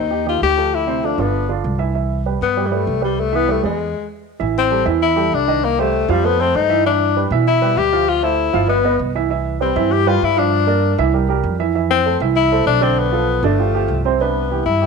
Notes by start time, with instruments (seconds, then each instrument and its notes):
Already playing: upright bass D#2, tenor saxophone D#4
0.11 grand piano D#3 D#4 G4
0.26 grand piano D#3 D#4 G4, tenor saxophone F4
0.42 upright bass D2, tenor saxophone G4
0.56 grand piano F3 F4 A4
0.74 tenor saxophone E4
0.87 grand piano C3 C4 C5
1.03 grand piano F3 F4 A4, tenor saxophone D4
1.18 upright bass G1, grand piano D3 D4 F4, tenor saxophone B3
1.49 grand piano D3 D4 F4
1.64 upright bass C2
1.78 grand piano E3 E4 E5
1.94 grand piano E3 E4 E5
2.26 grand piano G3 G4 B4
2.41 upright bass G2, tenor saxophone B3
2.57 grand piano G3 G4 B4
2.66 tenor saxophone G3
2.71 grand piano G3 G4 B4, tenor saxophone A3
2.87 upright bass C2
3.01 grand piano G3 G4 B4, tenor saxophone G3
3.20 tenor saxophone A3
3.32 grand piano E3 E4 E5, tenor saxophone B3
3.48 grand piano G3 G4 B4, tenor saxophone A3
3.63 upright bass E2, grand piano G#3 G#4 B4, tenor saxophone G#3
4.39 upright bass A1, grand piano E3 E4 E5
4.58 tenor saxophone C4
4.71 grand piano G3 G4 A4
4.85 upright bass E2, grand piano E3 E4 E5
5.02 tenor saxophone E4
5.16 grand piano G3 G4 A4
5.32 upright bass C2, tenor saxophone D4
5.48 grand piano D#3 D#4 D#5
5.65 tenor saxophone A#3
5.79 grand piano G3 G4 C5, tenor saxophone A3
6.09 upright bass F2, grand piano F3 F4 F5, tenor saxophone G3
6.24 grand piano A3 A4 C5, tenor saxophone B3
6.40 grand piano A3 A4 C5, tenor saxophone C4
6.55 upright bass G2, tenor saxophone D#4
6.69 grand piano E3 E4 E5
6.85 grand piano E3 E4 E5, tenor saxophone D4
7.16 grand piano G3 G4 B4
7.31 upright bass B2, grand piano E3 E4 E5
7.47 tenor saxophone E4
7.61 grand piano G3 G4 B4
7.77 upright bass D2, tenor saxophone G4
7.92 grand piano F3 F4 F5
8.09 tenor saxophone F4
8.23 grand piano A3 A4 C5, tenor saxophone E4
8.53 upright bass G1, grand piano F3 F4 F5
8.68 grand piano B3 B4 D#5, tenor saxophone B3
8.84 grand piano B3 B4 D#5
8.99 upright bass C2
9.15 grand piano E3 E4 E5
9.30 grand piano E3 E4 E5
9.60 grand piano G3 G4 B4, tenor saxophone C4
9.76 upright bass G2, grand piano E3 E4 E5
9.92 tenor saxophone G4
10.06 grand piano G3 G4 B4, tenor saxophone F4
10.22 upright bass G2, tenor saxophone E4
10.36 grand piano F3 F4 F5, tenor saxophone D4
10.67 grand piano A#3 A#4 D5
10.98 upright bass C2, grand piano E3 E4 E5
11.14 grand piano G3 G4 A#4
11.29 grand piano G3 G4 A#4
11.44 upright bass F2
11.59 grand piano E3 E4 E5
11.75 grand piano E3 E4 E5
11.90 tenor saxophone C4
12.05 grand piano A3 A4 C5
12.20 upright bass C2, grand piano E3 E4 E5
12.36 tenor saxophone E4
12.52 grand piano A3 A4 C5
12.66 upright bass B1, tenor saxophone D4
12.81 grand piano D3 D4 D5, tenor saxophone C4
12.99 tenor saxophone B3
13.12 grand piano F3 F4 A4
13.43 upright bass G1, grand piano D3 D4 D5, tenor saxophone A3
13.59 grand piano F3 F4 G4
13.75 grand piano F3 F4 G4
13.88 upright bass C2
14.05 grand piano C3 C4 C5
14.21 grand piano C3 D4 B4, tenor saxophone B3
14.51 grand piano E3 E4 G4
14.66 upright bass G2, tenor saxophone E4
14.81 grand piano E3 E4 G4